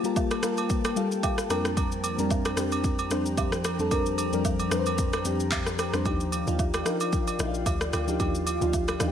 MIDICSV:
0, 0, Header, 1, 5, 480
1, 0, Start_track
1, 0, Tempo, 535714
1, 1586, Time_signature, 4, 2, 24, 8
1, 8169, End_track
2, 0, Start_track
2, 0, Title_t, "Ambient pad"
2, 0, Program_c, 0, 92
2, 0, Note_on_c, 0, 58, 76
2, 0, Note_on_c, 0, 65, 81
2, 0, Note_on_c, 0, 79, 74
2, 0, Note_on_c, 0, 81, 89
2, 1310, Note_off_c, 0, 65, 0
2, 1310, Note_off_c, 0, 81, 0
2, 1311, Note_off_c, 0, 58, 0
2, 1345, Note_on_c, 0, 53, 78
2, 1345, Note_on_c, 0, 62, 73
2, 1345, Note_on_c, 0, 72, 73
2, 1345, Note_on_c, 0, 82, 90
2, 5390, Note_off_c, 0, 53, 0
2, 5390, Note_off_c, 0, 62, 0
2, 5390, Note_off_c, 0, 72, 0
2, 5390, Note_off_c, 0, 82, 0
2, 5426, Note_on_c, 0, 65, 78
2, 5426, Note_on_c, 0, 74, 74
2, 5426, Note_on_c, 0, 77, 73
2, 8169, Note_off_c, 0, 65, 0
2, 8169, Note_off_c, 0, 74, 0
2, 8169, Note_off_c, 0, 77, 0
2, 8169, Note_off_c, 0, 79, 0
2, 8169, End_track
3, 0, Start_track
3, 0, Title_t, "FM electric piano"
3, 0, Program_c, 1, 5
3, 0, Control_c, 1, 64, 127
3, 0, Note_on_c, 1, 55, 82
3, 0, Note_on_c, 1, 58, 78
3, 0, Note_on_c, 1, 65, 77
3, 0, Note_on_c, 1, 67, 96
3, 0, Note_on_c, 1, 69, 92
3, 0, Note_on_c, 1, 71, 73
3, 0, Note_on_c, 1, 72, 92
3, 31, Note_off_c, 1, 55, 0
3, 31, Note_on_c, 1, 55, 86
3, 38, Note_off_c, 1, 58, 0
3, 38, Note_on_c, 1, 58, 80
3, 44, Note_off_c, 1, 65, 0
3, 44, Note_on_c, 1, 65, 76
3, 50, Note_on_c, 1, 70, 94
3, 318, Note_off_c, 1, 55, 0
3, 321, Note_off_c, 1, 58, 0
3, 324, Note_off_c, 1, 65, 0
3, 327, Note_off_c, 1, 70, 0
3, 380, Note_on_c, 1, 55, 82
3, 386, Note_on_c, 1, 58, 75
3, 392, Note_on_c, 1, 65, 77
3, 398, Note_on_c, 1, 70, 94
3, 777, Note_off_c, 1, 55, 0
3, 780, Note_off_c, 1, 58, 0
3, 783, Note_off_c, 1, 65, 0
3, 786, Note_off_c, 1, 70, 0
3, 859, Note_on_c, 1, 55, 88
3, 865, Note_on_c, 1, 58, 77
3, 868, Note_on_c, 1, 77, 72
3, 871, Note_on_c, 1, 65, 78
3, 877, Note_off_c, 1, 69, 0
3, 877, Note_on_c, 1, 69, 97
3, 1090, Note_off_c, 1, 77, 0
3, 1108, Note_on_c, 1, 79, 76
3, 1330, Note_off_c, 1, 79, 0
3, 1333, Note_off_c, 1, 55, 0
3, 1339, Note_on_c, 1, 41, 88
3, 1344, Note_on_c, 1, 55, 76
3, 1346, Note_off_c, 1, 58, 0
3, 1348, Note_on_c, 1, 60, 79
3, 1348, Note_on_c, 1, 82, 74
3, 1349, Note_off_c, 1, 65, 0
3, 1352, Note_off_c, 1, 69, 0
3, 1353, Note_on_c, 1, 62, 83
3, 1357, Note_off_c, 1, 71, 0
3, 1357, Control_c, 1, 64, 0
3, 1357, Note_on_c, 1, 70, 97
3, 1358, Note_off_c, 1, 72, 0
3, 1363, Note_off_c, 1, 67, 0
3, 1517, Control_c, 1, 64, 127
3, 1570, Note_off_c, 1, 82, 0
3, 1822, Note_off_c, 1, 41, 0
3, 1825, Note_off_c, 1, 55, 0
3, 1827, Note_off_c, 1, 60, 0
3, 1829, Note_off_c, 1, 62, 0
3, 1832, Note_off_c, 1, 70, 0
3, 1950, Note_on_c, 1, 41, 83
3, 1955, Note_on_c, 1, 55, 76
3, 1959, Note_on_c, 1, 60, 79
3, 1964, Note_on_c, 1, 62, 78
3, 1968, Note_on_c, 1, 70, 93
3, 2237, Note_off_c, 1, 41, 0
3, 2240, Note_off_c, 1, 55, 0
3, 2242, Note_off_c, 1, 60, 0
3, 2244, Note_off_c, 1, 62, 0
3, 2246, Note_off_c, 1, 70, 0
3, 2298, Note_on_c, 1, 41, 85
3, 2303, Note_on_c, 1, 55, 77
3, 2307, Note_on_c, 1, 60, 75
3, 2312, Note_on_c, 1, 62, 74
3, 2317, Note_on_c, 1, 67, 92
3, 2696, Note_off_c, 1, 41, 0
3, 2698, Note_off_c, 1, 55, 0
3, 2700, Note_off_c, 1, 60, 0
3, 2703, Note_off_c, 1, 62, 0
3, 2705, Note_off_c, 1, 67, 0
3, 2779, Note_on_c, 1, 41, 81
3, 2783, Note_on_c, 1, 55, 75
3, 2788, Note_on_c, 1, 60, 78
3, 2792, Note_on_c, 1, 62, 80
3, 2797, Note_on_c, 1, 72, 93
3, 3263, Note_off_c, 1, 41, 0
3, 3265, Note_off_c, 1, 55, 0
3, 3267, Note_off_c, 1, 60, 0
3, 3269, Note_off_c, 1, 62, 0
3, 3271, Note_off_c, 1, 72, 0
3, 3390, Note_on_c, 1, 41, 87
3, 3395, Note_on_c, 1, 55, 79
3, 3399, Note_on_c, 1, 60, 79
3, 3403, Note_on_c, 1, 62, 81
3, 3408, Note_on_c, 1, 69, 94
3, 3481, Note_off_c, 1, 41, 0
3, 3483, Note_off_c, 1, 55, 0
3, 3485, Note_off_c, 1, 60, 0
3, 3487, Note_off_c, 1, 62, 0
3, 3490, Note_off_c, 1, 69, 0
3, 3498, Note_on_c, 1, 41, 82
3, 3503, Note_on_c, 1, 55, 78
3, 3507, Note_on_c, 1, 60, 79
3, 3512, Note_on_c, 1, 62, 79
3, 3516, Note_on_c, 1, 70, 96
3, 3795, Note_off_c, 1, 41, 0
3, 3797, Note_off_c, 1, 55, 0
3, 3799, Note_off_c, 1, 60, 0
3, 3802, Note_off_c, 1, 62, 0
3, 3804, Note_off_c, 1, 70, 0
3, 3871, Note_on_c, 1, 41, 85
3, 3875, Note_on_c, 1, 55, 79
3, 3880, Note_on_c, 1, 60, 76
3, 3884, Note_on_c, 1, 62, 77
3, 3888, Note_on_c, 1, 70, 94
3, 4158, Note_off_c, 1, 41, 0
3, 4160, Note_off_c, 1, 55, 0
3, 4162, Note_off_c, 1, 60, 0
3, 4164, Note_off_c, 1, 62, 0
3, 4166, Note_off_c, 1, 70, 0
3, 4218, Note_on_c, 1, 41, 85
3, 4222, Note_on_c, 1, 55, 75
3, 4227, Note_on_c, 1, 60, 74
3, 4232, Note_on_c, 1, 62, 74
3, 4236, Note_on_c, 1, 71, 71
3, 4294, Note_on_c, 1, 72, 95
3, 4295, Note_off_c, 1, 71, 0
3, 4616, Note_off_c, 1, 41, 0
3, 4618, Note_off_c, 1, 55, 0
3, 4620, Note_off_c, 1, 60, 0
3, 4623, Note_off_c, 1, 62, 0
3, 4654, Note_off_c, 1, 72, 0
3, 4698, Note_on_c, 1, 41, 86
3, 4703, Note_on_c, 1, 55, 77
3, 4707, Note_on_c, 1, 60, 77
3, 4712, Note_on_c, 1, 62, 77
3, 4716, Note_on_c, 1, 67, 96
3, 5182, Note_off_c, 1, 41, 0
3, 5185, Note_off_c, 1, 55, 0
3, 5187, Note_off_c, 1, 60, 0
3, 5189, Note_off_c, 1, 62, 0
3, 5191, Note_off_c, 1, 67, 0
3, 5311, Note_on_c, 1, 41, 83
3, 5315, Note_on_c, 1, 55, 75
3, 5319, Note_on_c, 1, 60, 76
3, 5324, Note_on_c, 1, 62, 80
3, 5329, Note_on_c, 1, 72, 91
3, 5401, Note_off_c, 1, 41, 0
3, 5403, Note_off_c, 1, 55, 0
3, 5405, Note_off_c, 1, 60, 0
3, 5408, Note_off_c, 1, 62, 0
3, 5410, Note_off_c, 1, 72, 0
3, 5419, Note_on_c, 1, 53, 80
3, 5425, Note_on_c, 1, 62, 78
3, 5431, Note_on_c, 1, 63, 75
3, 5437, Note_on_c, 1, 67, 91
3, 5438, Control_c, 1, 64, 0
3, 5573, Control_c, 1, 64, 127
3, 5715, Note_off_c, 1, 53, 0
3, 5718, Note_off_c, 1, 62, 0
3, 5722, Note_off_c, 1, 63, 0
3, 5724, Note_off_c, 1, 67, 0
3, 5791, Note_on_c, 1, 53, 85
3, 5797, Note_on_c, 1, 62, 77
3, 5803, Note_on_c, 1, 63, 78
3, 5809, Note_on_c, 1, 65, 89
3, 6078, Note_off_c, 1, 53, 0
3, 6081, Note_off_c, 1, 62, 0
3, 6084, Note_off_c, 1, 63, 0
3, 6087, Note_off_c, 1, 65, 0
3, 6139, Note_on_c, 1, 53, 83
3, 6145, Note_on_c, 1, 62, 76
3, 6151, Note_on_c, 1, 63, 74
3, 6157, Note_on_c, 1, 70, 89
3, 6536, Note_off_c, 1, 53, 0
3, 6539, Note_off_c, 1, 62, 0
3, 6542, Note_off_c, 1, 63, 0
3, 6545, Note_off_c, 1, 70, 0
3, 6618, Note_on_c, 1, 53, 83
3, 6625, Note_on_c, 1, 62, 77
3, 6631, Note_on_c, 1, 63, 80
3, 6636, Note_on_c, 1, 64, 73
3, 6694, Note_on_c, 1, 65, 93
3, 6695, Note_off_c, 1, 64, 0
3, 7102, Note_off_c, 1, 53, 0
3, 7105, Note_off_c, 1, 62, 0
3, 7108, Note_off_c, 1, 63, 0
3, 7140, Note_off_c, 1, 65, 0
3, 7231, Note_on_c, 1, 53, 84
3, 7237, Note_on_c, 1, 62, 78
3, 7243, Note_on_c, 1, 63, 81
3, 7249, Note_on_c, 1, 67, 92
3, 7321, Note_off_c, 1, 53, 0
3, 7324, Note_off_c, 1, 62, 0
3, 7327, Note_off_c, 1, 63, 0
3, 7330, Note_off_c, 1, 67, 0
3, 7339, Note_on_c, 1, 53, 85
3, 7345, Note_on_c, 1, 62, 74
3, 7351, Note_on_c, 1, 63, 75
3, 7357, Note_on_c, 1, 67, 90
3, 7635, Note_off_c, 1, 53, 0
3, 7638, Note_off_c, 1, 62, 0
3, 7641, Note_off_c, 1, 63, 0
3, 7644, Note_off_c, 1, 67, 0
3, 7711, Note_on_c, 1, 53, 89
3, 7717, Note_on_c, 1, 62, 76
3, 7723, Note_on_c, 1, 63, 75
3, 7729, Note_on_c, 1, 65, 97
3, 7998, Note_off_c, 1, 53, 0
3, 8001, Note_off_c, 1, 62, 0
3, 8004, Note_off_c, 1, 63, 0
3, 8007, Note_off_c, 1, 65, 0
3, 8059, Note_on_c, 1, 53, 86
3, 8065, Note_on_c, 1, 62, 77
3, 8071, Note_on_c, 1, 63, 77
3, 8077, Note_on_c, 1, 65, 76
3, 8135, Note_off_c, 1, 65, 0
3, 8135, Note_on_c, 1, 67, 90
3, 8169, Note_off_c, 1, 53, 0
3, 8169, Note_off_c, 1, 62, 0
3, 8169, Note_off_c, 1, 63, 0
3, 8169, Note_off_c, 1, 67, 0
3, 8169, End_track
4, 0, Start_track
4, 0, Title_t, "Log drum bass"
4, 0, Program_c, 2, 39
4, 5425, Note_on_c, 2, 39, 108
4, 5772, Note_off_c, 2, 39, 0
4, 5798, Note_on_c, 2, 39, 91
4, 6122, Note_off_c, 2, 39, 0
4, 6626, Note_on_c, 2, 34, 103
4, 6849, Note_off_c, 2, 34, 0
4, 6864, Note_on_c, 2, 38, 105
4, 7088, Note_off_c, 2, 38, 0
4, 7107, Note_on_c, 2, 38, 88
4, 7330, Note_off_c, 2, 38, 0
4, 7346, Note_on_c, 2, 39, 111
4, 7692, Note_off_c, 2, 39, 0
4, 7718, Note_on_c, 2, 38, 94
4, 8042, Note_off_c, 2, 38, 0
4, 8066, Note_on_c, 2, 39, 102
4, 8169, Note_off_c, 2, 39, 0
4, 8169, End_track
5, 0, Start_track
5, 0, Title_t, "Drums"
5, 39, Note_on_c, 9, 82, 53
5, 128, Note_off_c, 9, 82, 0
5, 146, Note_on_c, 9, 36, 89
5, 146, Note_on_c, 9, 82, 68
5, 148, Note_on_c, 9, 77, 72
5, 235, Note_off_c, 9, 36, 0
5, 236, Note_off_c, 9, 82, 0
5, 238, Note_off_c, 9, 77, 0
5, 276, Note_on_c, 9, 82, 49
5, 278, Note_on_c, 9, 67, 65
5, 280, Note_on_c, 9, 37, 94
5, 366, Note_off_c, 9, 82, 0
5, 368, Note_off_c, 9, 67, 0
5, 370, Note_off_c, 9, 37, 0
5, 384, Note_on_c, 9, 37, 99
5, 385, Note_on_c, 9, 82, 102
5, 473, Note_off_c, 9, 37, 0
5, 475, Note_off_c, 9, 82, 0
5, 514, Note_on_c, 9, 82, 52
5, 520, Note_on_c, 9, 67, 76
5, 604, Note_off_c, 9, 82, 0
5, 610, Note_off_c, 9, 67, 0
5, 624, Note_on_c, 9, 82, 73
5, 626, Note_on_c, 9, 36, 102
5, 713, Note_off_c, 9, 82, 0
5, 716, Note_off_c, 9, 36, 0
5, 757, Note_on_c, 9, 82, 51
5, 759, Note_on_c, 9, 67, 69
5, 760, Note_on_c, 9, 37, 99
5, 847, Note_off_c, 9, 82, 0
5, 848, Note_off_c, 9, 67, 0
5, 850, Note_off_c, 9, 37, 0
5, 865, Note_on_c, 9, 82, 75
5, 954, Note_off_c, 9, 82, 0
5, 999, Note_on_c, 9, 82, 51
5, 1089, Note_off_c, 9, 82, 0
5, 1104, Note_on_c, 9, 36, 87
5, 1105, Note_on_c, 9, 67, 72
5, 1105, Note_on_c, 9, 77, 70
5, 1105, Note_on_c, 9, 82, 78
5, 1194, Note_off_c, 9, 36, 0
5, 1195, Note_off_c, 9, 67, 0
5, 1195, Note_off_c, 9, 77, 0
5, 1195, Note_off_c, 9, 82, 0
5, 1236, Note_on_c, 9, 37, 90
5, 1239, Note_on_c, 9, 82, 54
5, 1326, Note_off_c, 9, 37, 0
5, 1329, Note_off_c, 9, 82, 0
5, 1345, Note_on_c, 9, 82, 83
5, 1347, Note_on_c, 9, 37, 91
5, 1348, Note_on_c, 9, 67, 69
5, 1435, Note_off_c, 9, 82, 0
5, 1437, Note_off_c, 9, 37, 0
5, 1438, Note_off_c, 9, 67, 0
5, 1478, Note_on_c, 9, 37, 92
5, 1479, Note_on_c, 9, 82, 47
5, 1568, Note_off_c, 9, 37, 0
5, 1568, Note_off_c, 9, 82, 0
5, 1586, Note_on_c, 9, 36, 107
5, 1586, Note_on_c, 9, 67, 67
5, 1586, Note_on_c, 9, 82, 71
5, 1676, Note_off_c, 9, 36, 0
5, 1676, Note_off_c, 9, 67, 0
5, 1676, Note_off_c, 9, 82, 0
5, 1719, Note_on_c, 9, 82, 48
5, 1809, Note_off_c, 9, 82, 0
5, 1825, Note_on_c, 9, 67, 72
5, 1828, Note_on_c, 9, 82, 92
5, 1915, Note_off_c, 9, 67, 0
5, 1918, Note_off_c, 9, 82, 0
5, 1959, Note_on_c, 9, 82, 52
5, 2048, Note_off_c, 9, 82, 0
5, 2066, Note_on_c, 9, 36, 88
5, 2067, Note_on_c, 9, 82, 71
5, 2068, Note_on_c, 9, 77, 72
5, 2155, Note_off_c, 9, 36, 0
5, 2156, Note_off_c, 9, 82, 0
5, 2158, Note_off_c, 9, 77, 0
5, 2197, Note_on_c, 9, 67, 67
5, 2197, Note_on_c, 9, 82, 53
5, 2200, Note_on_c, 9, 37, 94
5, 2286, Note_off_c, 9, 82, 0
5, 2287, Note_off_c, 9, 67, 0
5, 2290, Note_off_c, 9, 37, 0
5, 2303, Note_on_c, 9, 37, 98
5, 2305, Note_on_c, 9, 82, 102
5, 2393, Note_off_c, 9, 37, 0
5, 2394, Note_off_c, 9, 82, 0
5, 2434, Note_on_c, 9, 82, 51
5, 2440, Note_on_c, 9, 67, 75
5, 2524, Note_off_c, 9, 82, 0
5, 2529, Note_off_c, 9, 67, 0
5, 2544, Note_on_c, 9, 82, 70
5, 2546, Note_on_c, 9, 36, 97
5, 2634, Note_off_c, 9, 82, 0
5, 2635, Note_off_c, 9, 36, 0
5, 2677, Note_on_c, 9, 82, 52
5, 2679, Note_on_c, 9, 67, 71
5, 2767, Note_off_c, 9, 82, 0
5, 2768, Note_off_c, 9, 67, 0
5, 2785, Note_on_c, 9, 82, 74
5, 2790, Note_on_c, 9, 37, 91
5, 2874, Note_off_c, 9, 82, 0
5, 2879, Note_off_c, 9, 37, 0
5, 2919, Note_on_c, 9, 82, 50
5, 3008, Note_off_c, 9, 82, 0
5, 3024, Note_on_c, 9, 36, 91
5, 3025, Note_on_c, 9, 67, 68
5, 3025, Note_on_c, 9, 77, 72
5, 3025, Note_on_c, 9, 82, 81
5, 3114, Note_off_c, 9, 36, 0
5, 3114, Note_off_c, 9, 82, 0
5, 3115, Note_off_c, 9, 67, 0
5, 3115, Note_off_c, 9, 77, 0
5, 3156, Note_on_c, 9, 37, 93
5, 3159, Note_on_c, 9, 82, 51
5, 3246, Note_off_c, 9, 37, 0
5, 3249, Note_off_c, 9, 82, 0
5, 3266, Note_on_c, 9, 82, 82
5, 3268, Note_on_c, 9, 37, 96
5, 3269, Note_on_c, 9, 67, 72
5, 3355, Note_off_c, 9, 82, 0
5, 3357, Note_off_c, 9, 37, 0
5, 3358, Note_off_c, 9, 67, 0
5, 3399, Note_on_c, 9, 82, 48
5, 3488, Note_off_c, 9, 82, 0
5, 3506, Note_on_c, 9, 36, 113
5, 3506, Note_on_c, 9, 67, 70
5, 3506, Note_on_c, 9, 82, 72
5, 3595, Note_off_c, 9, 36, 0
5, 3596, Note_off_c, 9, 67, 0
5, 3596, Note_off_c, 9, 82, 0
5, 3638, Note_on_c, 9, 82, 49
5, 3728, Note_off_c, 9, 82, 0
5, 3745, Note_on_c, 9, 67, 71
5, 3748, Note_on_c, 9, 82, 98
5, 3835, Note_off_c, 9, 67, 0
5, 3838, Note_off_c, 9, 82, 0
5, 3879, Note_on_c, 9, 82, 51
5, 3968, Note_off_c, 9, 82, 0
5, 3986, Note_on_c, 9, 36, 85
5, 3986, Note_on_c, 9, 82, 71
5, 3988, Note_on_c, 9, 77, 73
5, 4075, Note_off_c, 9, 36, 0
5, 4076, Note_off_c, 9, 82, 0
5, 4078, Note_off_c, 9, 77, 0
5, 4117, Note_on_c, 9, 82, 51
5, 4118, Note_on_c, 9, 67, 67
5, 4206, Note_off_c, 9, 82, 0
5, 4207, Note_off_c, 9, 67, 0
5, 4224, Note_on_c, 9, 37, 99
5, 4225, Note_on_c, 9, 82, 98
5, 4314, Note_off_c, 9, 37, 0
5, 4315, Note_off_c, 9, 82, 0
5, 4354, Note_on_c, 9, 82, 51
5, 4360, Note_on_c, 9, 67, 74
5, 4444, Note_off_c, 9, 82, 0
5, 4450, Note_off_c, 9, 67, 0
5, 4464, Note_on_c, 9, 82, 71
5, 4466, Note_on_c, 9, 36, 100
5, 4554, Note_off_c, 9, 82, 0
5, 4555, Note_off_c, 9, 36, 0
5, 4597, Note_on_c, 9, 82, 51
5, 4599, Note_on_c, 9, 67, 70
5, 4600, Note_on_c, 9, 37, 96
5, 4687, Note_off_c, 9, 82, 0
5, 4689, Note_off_c, 9, 67, 0
5, 4690, Note_off_c, 9, 37, 0
5, 4704, Note_on_c, 9, 82, 75
5, 4794, Note_off_c, 9, 82, 0
5, 4838, Note_on_c, 9, 82, 54
5, 4928, Note_off_c, 9, 82, 0
5, 4943, Note_on_c, 9, 39, 98
5, 4944, Note_on_c, 9, 36, 95
5, 4945, Note_on_c, 9, 82, 84
5, 4946, Note_on_c, 9, 67, 71
5, 4946, Note_on_c, 9, 77, 71
5, 5033, Note_off_c, 9, 36, 0
5, 5033, Note_off_c, 9, 39, 0
5, 5035, Note_off_c, 9, 67, 0
5, 5035, Note_off_c, 9, 77, 0
5, 5035, Note_off_c, 9, 82, 0
5, 5076, Note_on_c, 9, 37, 91
5, 5078, Note_on_c, 9, 82, 54
5, 5165, Note_off_c, 9, 37, 0
5, 5168, Note_off_c, 9, 82, 0
5, 5185, Note_on_c, 9, 82, 83
5, 5187, Note_on_c, 9, 37, 90
5, 5189, Note_on_c, 9, 67, 70
5, 5275, Note_off_c, 9, 82, 0
5, 5277, Note_off_c, 9, 37, 0
5, 5279, Note_off_c, 9, 67, 0
5, 5318, Note_on_c, 9, 37, 89
5, 5318, Note_on_c, 9, 82, 49
5, 5408, Note_off_c, 9, 37, 0
5, 5408, Note_off_c, 9, 82, 0
5, 5425, Note_on_c, 9, 82, 73
5, 5426, Note_on_c, 9, 36, 117
5, 5426, Note_on_c, 9, 67, 69
5, 5515, Note_off_c, 9, 36, 0
5, 5515, Note_off_c, 9, 82, 0
5, 5516, Note_off_c, 9, 67, 0
5, 5559, Note_on_c, 9, 82, 48
5, 5649, Note_off_c, 9, 82, 0
5, 5665, Note_on_c, 9, 67, 69
5, 5668, Note_on_c, 9, 82, 96
5, 5755, Note_off_c, 9, 67, 0
5, 5758, Note_off_c, 9, 82, 0
5, 5799, Note_on_c, 9, 82, 53
5, 5888, Note_off_c, 9, 82, 0
5, 5906, Note_on_c, 9, 36, 87
5, 5906, Note_on_c, 9, 82, 70
5, 5908, Note_on_c, 9, 77, 72
5, 5995, Note_off_c, 9, 36, 0
5, 5996, Note_off_c, 9, 82, 0
5, 5997, Note_off_c, 9, 77, 0
5, 6037, Note_on_c, 9, 67, 67
5, 6037, Note_on_c, 9, 82, 49
5, 6041, Note_on_c, 9, 37, 94
5, 6127, Note_off_c, 9, 67, 0
5, 6127, Note_off_c, 9, 82, 0
5, 6131, Note_off_c, 9, 37, 0
5, 6145, Note_on_c, 9, 37, 95
5, 6146, Note_on_c, 9, 82, 107
5, 6234, Note_off_c, 9, 37, 0
5, 6236, Note_off_c, 9, 82, 0
5, 6275, Note_on_c, 9, 82, 53
5, 6279, Note_on_c, 9, 67, 78
5, 6365, Note_off_c, 9, 82, 0
5, 6369, Note_off_c, 9, 67, 0
5, 6385, Note_on_c, 9, 82, 68
5, 6386, Note_on_c, 9, 36, 99
5, 6475, Note_off_c, 9, 82, 0
5, 6476, Note_off_c, 9, 36, 0
5, 6518, Note_on_c, 9, 82, 53
5, 6519, Note_on_c, 9, 67, 73
5, 6607, Note_off_c, 9, 82, 0
5, 6608, Note_off_c, 9, 67, 0
5, 6625, Note_on_c, 9, 82, 76
5, 6630, Note_on_c, 9, 37, 94
5, 6715, Note_off_c, 9, 82, 0
5, 6720, Note_off_c, 9, 37, 0
5, 6759, Note_on_c, 9, 82, 50
5, 6849, Note_off_c, 9, 82, 0
5, 6864, Note_on_c, 9, 36, 90
5, 6864, Note_on_c, 9, 67, 67
5, 6864, Note_on_c, 9, 77, 67
5, 6866, Note_on_c, 9, 82, 80
5, 6954, Note_off_c, 9, 36, 0
5, 6954, Note_off_c, 9, 67, 0
5, 6954, Note_off_c, 9, 77, 0
5, 6955, Note_off_c, 9, 82, 0
5, 6997, Note_on_c, 9, 37, 94
5, 7000, Note_on_c, 9, 82, 53
5, 7087, Note_off_c, 9, 37, 0
5, 7089, Note_off_c, 9, 82, 0
5, 7106, Note_on_c, 9, 82, 82
5, 7108, Note_on_c, 9, 37, 90
5, 7108, Note_on_c, 9, 67, 68
5, 7196, Note_off_c, 9, 82, 0
5, 7198, Note_off_c, 9, 37, 0
5, 7198, Note_off_c, 9, 67, 0
5, 7239, Note_on_c, 9, 82, 47
5, 7329, Note_off_c, 9, 82, 0
5, 7345, Note_on_c, 9, 67, 70
5, 7346, Note_on_c, 9, 36, 109
5, 7347, Note_on_c, 9, 82, 73
5, 7435, Note_off_c, 9, 67, 0
5, 7436, Note_off_c, 9, 36, 0
5, 7437, Note_off_c, 9, 82, 0
5, 7479, Note_on_c, 9, 82, 47
5, 7569, Note_off_c, 9, 82, 0
5, 7586, Note_on_c, 9, 67, 72
5, 7589, Note_on_c, 9, 82, 98
5, 7675, Note_off_c, 9, 67, 0
5, 7679, Note_off_c, 9, 82, 0
5, 7720, Note_on_c, 9, 82, 50
5, 7809, Note_off_c, 9, 82, 0
5, 7826, Note_on_c, 9, 36, 89
5, 7827, Note_on_c, 9, 77, 71
5, 7827, Note_on_c, 9, 82, 75
5, 7915, Note_off_c, 9, 36, 0
5, 7916, Note_off_c, 9, 82, 0
5, 7917, Note_off_c, 9, 77, 0
5, 7957, Note_on_c, 9, 67, 66
5, 7957, Note_on_c, 9, 82, 52
5, 7961, Note_on_c, 9, 37, 95
5, 8046, Note_off_c, 9, 82, 0
5, 8047, Note_off_c, 9, 67, 0
5, 8050, Note_off_c, 9, 37, 0
5, 8064, Note_on_c, 9, 37, 100
5, 8066, Note_on_c, 9, 82, 100
5, 8154, Note_off_c, 9, 37, 0
5, 8155, Note_off_c, 9, 82, 0
5, 8169, End_track
0, 0, End_of_file